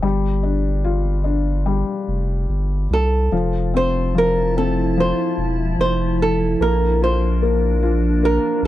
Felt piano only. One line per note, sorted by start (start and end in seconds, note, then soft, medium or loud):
0.02 1.64 G3 medium
0.43 1.23 D4 soft
0.84 2.45 F4 soft
1.24 2.86 D4 soft
1.66 3.28 G3 soft
3.32 4.13 F3 medium
3.74 4.56 C4 soft
4.15 4.96 F3 soft
4.57 6.16 C4 soft
4.97 6.56 F3 soft
6.61 7.41 A#3 medium
7.02 7.81 F4 soft
7.42 8.22 A#3 soft
7.83 8.67 F4 soft
8.23 8.67 A#3 soft